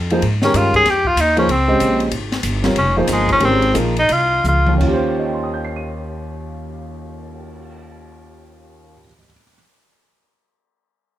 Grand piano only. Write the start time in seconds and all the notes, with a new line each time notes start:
0.11 F3 A#3 D#4 G#4 C5
0.42 D#3 G#3 C#4 G4 A#4
1.36 F3 A#3 D#4 G#4 C5
1.68 C#3 G#3 G4 C5 D#5
2.64 G3 C4 F4 A#4 C#5
2.97 F3 A#3 D#4 G#4 C5
3.40 D#3 G#3 C#4 G4 A#4
3.74 F3 A#3 D#4 G#4 A#4
4.68 D#2
4.73 D#3
4.78 C#4
4.83 F4
4.88 G4
4.93 C5
5.19 D#5
5.26 G5
5.35 C6
5.44 D#6
5.54 G6
5.65 C7
5.76 D#7